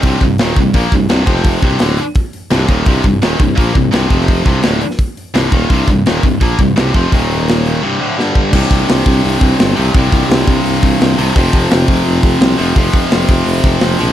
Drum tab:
CC |----------------|----------------|----------------|----------------|
HH |o-o-o-o-o-o-o-o-|o-o-o-o-o-o-o-o-|o-o-o-o-o-o-o-o-|o-o-o-o-o-o-o-o-|
SD |----o-------o--o|----o-------o---|----o-------o--o|----o--o----o---|
BD |o-o---o-o-o---o-|o-o-----o-----o-|o-o---o-o-o---o-|o-o-----o-----o-|

CC |----------------|----------------|x---------------|----------------|
HH |o-o-o-o-o-o-o-o-|o-o-o-o---------|--o-o-o-o-o-o-o-|o-o-o-o-o-o-o-o-|
SD |----o-------o---|----o-------o---|----o-------o---|----o-------o-o-|
BD |o-o---o-o-o---o-|o-------------o-|o-o---o---o-----|o-o---o---o-----|

CC |----------------|----------------|
HH |o-o-o-o-o-o-o-o-|o-o-o-o-o-o-o-o-|
SD |----o-------o---|----o-------o---|
BD |o-o---o---o-----|o-o---o---o-----|